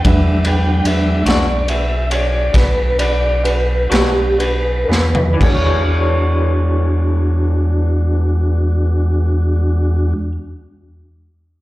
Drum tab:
CC |------------------------|x-----------------------|
RD |x-x-x-x-x-x-x-x-x-x-x---|------------------------|
SD |------o-----o-----o---o-|------------------------|
FT |-----------------------o|------------------------|
BD |o-----------o-----------|o-----------------------|